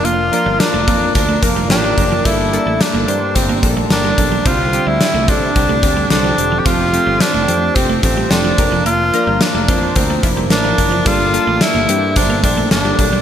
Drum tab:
HH |xxxxxxxx|xxxxxxxx|xxxxxxxx|xxxxxxxx|
SD |--o---o-|--o---o-|--o---o-|--o---o-|
BD |---ooo-o|o---oo-o|o--ooo--|o---oo-o|

HH |xxxxxxxx|xxxxxxxx|
SD |--o---o-|--o---o-|
BD |---ooo-o|o---oo-o|